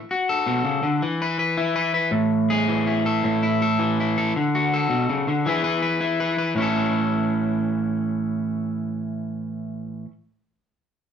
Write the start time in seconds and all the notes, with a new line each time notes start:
0.11 F#4
0.29 A4
0.46 B2
0.65 C#3
0.83 D3
1.02 E3
1.22 B4
1.39 B4
1.57 E4
1.76 B4
1.94 B4
2.11 A2
2.50 G#4
2.69 E3
2.87 E4
3.06 A4
3.24 A2
3.43 E4
3.62 A4
3.79 E3
4.00 E4
4.18 A4
4.36 D3
4.55 F#4
4.74 A4
4.90 B2
5.09 C#3
5.28 D3
5.46 E3 E4 G#4 B4
5.64 B4
5.82 B4
6.01 E4
6.20 B4
6.38 B4
6.55 A2 E3 C#4
6.60 E4 A4